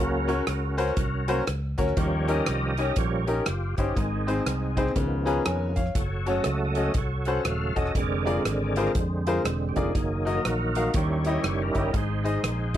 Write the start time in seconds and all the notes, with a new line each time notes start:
Already playing: C#2 C#3
0.00 F#3 A#3 C#4 F#4 A#4
0.28 C#4 F#4 A#4 C#5, closed hi-hat
0.47 C#2, cross-stick, closed hi-hat
0.77 C#4 F#4 A#4 C5, closed hi-hat
0.88 cross-stick
0.97 C2, kick, closed hi-hat
1.28 F#3 A#3 C#4 F#4 A#4 C5, closed hi-hat
1.47 C#2, cross-stick, closed hi-hat
1.78 D2 C#4 F#4 A#4 C#5, kick, closed hi-hat
1.88 cross-stick
1.97 D#2 D#3 F3 G3 C#4 G4 A#4 C#5, kick, closed hi-hat
2.27 C#4 D#4 G4 A#4 F5, closed hi-hat
2.31 D#5
2.46 C2, cross-stick, closed hi-hat
2.65 D#5
2.77 C#4 D#4 G4 C#5, closed hi-hat
2.96 A#1 F3 G3 C#4 G4 A#4 C#5, kick, closed hi-hat
3.27 C#4 D#4 G4 A#4, closed hi-hat
3.46 F#1 F4, cross-stick, closed hi-hat
3.77 G1 C#4 D#4 G4 C5, kick, closed hi-hat
3.95 G#1 G#2 D#3 G#3 C4 D#4 G#4, kick, closed hi-hat
4.27 C4 D#4 G#4 C5, closed hi-hat
4.46 C2, cross-stick, closed hi-hat
4.77 C4 D#4 G#4 C5, kick, closed hi-hat
4.87 cross-stick
4.96 C#2 C#3 D#3 F3 B3, kick, closed hi-hat
5.25 C#4 F4 G#4 B4 A#5, closed hi-hat
5.45 F2 A#4 C#5 G#5, cross-stick, closed hi-hat
5.76 C#5 F5, kick, closed hi-hat
5.86 cross-stick
5.95 F#1 F#4 A4 C#5, kick, closed hi-hat
6.26 C#3 F#3 A3 C#4 F#4 A4 C#5 D#5, closed hi-hat
6.44 C#2, cross-stick, closed hi-hat
6.65 D#5
6.75 C#4 F#4 A4 D#5, closed hi-hat
6.94 C2 A4 C#5, kick, closed hi-hat
6.98 F#4
7.25 C#4 F#4 A4 C5 F#5, closed hi-hat
7.43 D#1 C#3 F#3 E5 F5, cross-stick, closed hi-hat
7.48 A3
7.76 E1 C#4 F#4 A4 D#5, kick, closed hi-hat
7.86 cross-stick
7.95 F1 D3 G#3 C4 G#4 A#4 D5, kick, closed hi-hat
8.25 F4 G#4 A#4 D5, closed hi-hat
8.45 G#1, cross-stick, closed hi-hat
8.76 F4 G#4 A#4 C5, closed hi-hat
8.86 cross-stick
8.95 F2, kick, closed hi-hat
9.27 F4 G#4 A#4 C5, closed hi-hat
9.45 E1, cross-stick, closed hi-hat
9.69 G4
9.76 F1 D#4 F4 G#4 A#4 D5, kick, closed hi-hat
9.95 F#1 D#3 F#3 A#3, kick, closed hi-hat
10.25 D#4 F#4 A#4 D#5, closed hi-hat
10.37 A#4
10.45 A#1 D#4 F#4 A#4, cross-stick, closed hi-hat
10.75 D#4 F#4 A#4 F5, closed hi-hat
10.94 D#2 D#3 G3 C#4 G4 C#5, kick, closed hi-hat
10.98 E4
11.25 E4 G4 C#5 D#5, closed hi-hat
11.29 C#5
11.44 F#1, cross-stick, closed hi-hat
11.62 A#4
11.75 G1 E4 G4 C#5 D#5, kick, closed hi-hat
11.93 G#1 G#2 D#4 G#4 C5, kick, closed hi-hat
12.24 D#4 G#4 C5 D#5, closed hi-hat
12.43 A#1, cross-stick, closed hi-hat